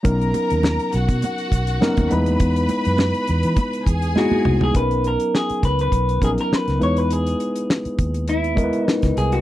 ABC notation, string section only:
X:1
M:4/4
L:1/8
Q:"Swing 16ths" 1/4=102
K:B
V:1 name="String section"
[Aa]3 [Ff]4 [Bb]- | [Bb]4- [Bb] [Gg]3 | z8 | z8 |]